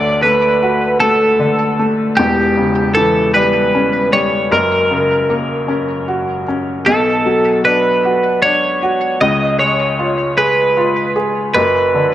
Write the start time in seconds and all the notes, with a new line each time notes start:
Already playing: D2 D3 D5
0.23 A3 B4
0.63 F#4
1.00 A3 A4
1.39 D3
1.79 A3
2.17 E1 E2 G4
2.58 C#3
2.95 E3 A4
3.34 G3 B4
3.75 C#4
4.13 G3 C#5
4.51 F#1 F#2 A#4
4.91 C#3
5.30 A#3
5.68 C#4
6.08 F#4
6.48 C#4
6.86 B1 B2 A4
7.26 F#3
7.65 D4 B4
8.05 F#4
8.42 D4 C#5
8.83 F#4
9.21 C#2 C#3 D#5
9.59 G#3 C#5
9.99 F4
10.37 G#4 B4
10.77 F4
11.16 G#4
11.55 F#1 F#2 B4
11.94 D3